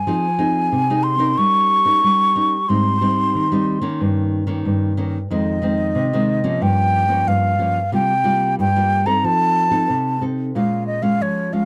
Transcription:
Already playing: flute G#5
0.07 nylon-string guitar F3 C4 D#4 G#4
0.38 nylon-string guitar C4 D#4 G#4
0.72 nylon-string guitar C3
0.90 nylon-string guitar C4 D#4 G#4
1.03 flute C6
1.18 nylon-string guitar C#4 D#4 A#4
1.38 nylon-string guitar G3, flute C#6
1.85 nylon-string guitar C#4 D#4 A#4
2.04 nylon-string guitar G3
2.35 nylon-string guitar C#4 D#4 A#4
2.69 nylon-string guitar G#2 G3 C4 D#4, flute C6
3.01 nylon-string guitar G3 C4 D#4
3.35 nylon-string guitar D#3
3.52 nylon-string guitar G3 C4 D#4
3.81 nylon-string guitar D#3 A#3 C#4
4.01 nylon-string guitar G2
4.47 nylon-string guitar D#3 A#3 C#4
4.65 nylon-string guitar G2
4.97 nylon-string guitar D#3 A#3 C#4
5.30 nylon-string guitar F2 D#3 G#3 C4, flute D#5
5.62 nylon-string guitar D#3 G#3 C4
5.95 nylon-string guitar C3
6.13 nylon-string guitar D#3 G#3 C4
6.44 nylon-string guitar F3 A#3 C#4
6.61 nylon-string guitar G2, flute G5
7.09 nylon-string guitar F3 A#3 C#4
7.27 nylon-string guitar G2, flute F5
7.59 nylon-string guitar F3 A#3 C#4
7.92 nylon-string guitar C3 G3 A#3 F4, flute G5
8.24 nylon-string guitar G3 A#3 F4
8.59 nylon-string guitar G2, flute G5
8.76 nylon-string guitar G3 A#3 F4
9.06 nylon-string guitar C4 D#4 A4, flute A#5
9.24 nylon-string guitar F3, flute A5
9.71 nylon-string guitar C4 D#4 A4
9.90 nylon-string guitar C3
10.21 nylon-string guitar C4 D#4 A4
10.55 nylon-string guitar A#2 G#3 C#4 F4, flute F5
10.87 flute D#5
11.02 nylon-string guitar G#3 C#4 F4, flute F5
11.21 nylon-string guitar F3, flute C#5
11.53 nylon-string guitar G#3 C#4 F4, flute F5

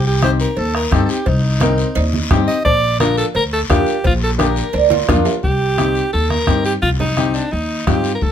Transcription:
Already playing: upright bass C2
0.07 alto saxophone G4
0.22 upright piano C4 D#4 G4, alto saxophone C5, bombo rim, high conga, short guiro
0.40 alto saxophone A#4, short guiro
0.57 upright bass D#2, alto saxophone A4, cowbell, long guiro
0.75 alto saxophone A#4, bombo rim
0.91 upright bass G2, upright piano C4 D#4 G4, alto saxophone A4, bombo low, bombo rim, high conga, short guiro
1.05 alto saxophone A4, short guiro
1.10 alto saxophone G4
1.26 upright bass C2, alto saxophone D#4, bombo low, cowbell, long guiro
1.60 oud C4, upright piano C4 D#4 A#4, bombo rim, high conga, short guiro
1.78 short guiro
1.95 upright bass D#2, oud D#4, cowbell, long guiro
2.13 high conga
2.31 upright bass G2, upright piano C4 D#4 G4, bombo low, bombo rim, high conga, low conga, low timbale, short guiro
2.47 alto saxophone D#5, short guiro
2.65 upright bass A#1, alto saxophone D5, bombo low, cowbell, long guiro
3.00 upright piano A#3 D4 F4, alto saxophone A#4, bombo rim, high conga, short guiro
3.18 alto saxophone A4, short guiro
3.35 upright bass D2, alto saxophone A#4, cowbell, long guiro
3.53 alto saxophone A4
3.70 upright bass F2, upright piano A#3 D4 F4, alto saxophone G4, bombo low, bombo rim, high conga, low timbale, short guiro
3.86 short guiro
4.04 upright bass A#1, alto saxophone F4, bombo low, cowbell, long guiro
4.23 alto saxophone A4
4.38 upright piano A#3 D4 G4, alto saxophone A#4, bombo rim, high conga, short guiro
4.56 short guiro
4.73 upright bass D2, oud D4, cowbell, long guiro
4.90 oud F4, high conga, high timbale
5.09 upright bass F2, upright piano A#3 D4 F4, oud F4, bombo low, bombo rim, high conga, low conga, short guiro
5.25 low timbale, short guiro
5.43 upright bass C2, alto saxophone G4, bombo low, long guiro
5.77 upright piano C4 D#4 G4, bombo rim, high conga, short guiro
5.95 short guiro
6.13 upright bass D#2, alto saxophone A4, long guiro
6.30 alto saxophone A#4, bombo rim, high conga
6.47 upright bass G2, upright piano C4 D#4 G4, bombo low, bombo rim, high conga, short guiro
6.65 alto saxophone G4, short guiro
6.82 upright bass C2, alto saxophone F4, bombo low, long guiro
7.00 alto saxophone D#4, low conga
7.17 upright piano C4 D#4 G4, bombo rim, high conga, short guiro
7.34 alto saxophone D4, short guiro
7.51 upright bass D#2, alto saxophone D#4, long guiro
7.87 upright bass G2, upright piano C4 D#4 F4, alto saxophone G4, bombo low, bombo rim, high conga, low conga, short guiro
8.04 short guiro
8.15 alto saxophone A#4
8.21 upright bass D2, alto saxophone A4, bombo low, long guiro

